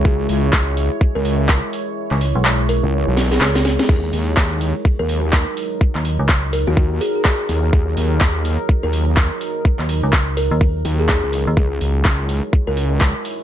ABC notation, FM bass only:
X:1
M:4/4
L:1/16
Q:"Swing 16ths" 1/4=125
K:Ebphr
V:1 name="FM bass" clef=bass
z16 | z D,,2 C,,4 z4 z D,,3 z | z16 | z E,,2 D,,4 z8 z |
z16 | z E,,2 D,,4 E,,3 z4 z E,, | z16 |]